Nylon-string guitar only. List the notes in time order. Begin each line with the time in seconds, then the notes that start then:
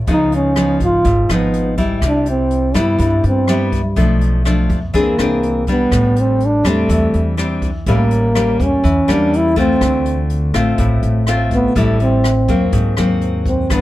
0.08 C#3 F3 B3 D#4
0.56 F3 B3 D#4
1.05 G#2
1.29 F3 B3 D#4
1.78 G3 E4
2.02 C3
2.74 G3 B3 E4
2.99 G2
3.49 G3 B3 E4
3.96 B2 F3 A3 D4
4.45 F3 A3 D4
4.94 E3 C4 D4 G#4
5.19 C4 D4 G#4
5.68 G3 D4
5.92 A2
6.65 G3 C4 D4
6.89 E3
7.37 G3 C4 D4
7.88 A2 G3 A#3 C#4
8.35 G3 A#3 C#4
8.84 E3
9.08 G3 A#3 C#4
9.56 A3 C4 F4
9.81 D3
10.54 A3 C4 F4
10.78 A2
11.28 A3 C4 F4
11.76 A2 G3 C4 E4
12.49 F#3 A#3 C4
12.73 G#2
12.98 F#3 A#3 C4
13.70 G2 E3 B3 D4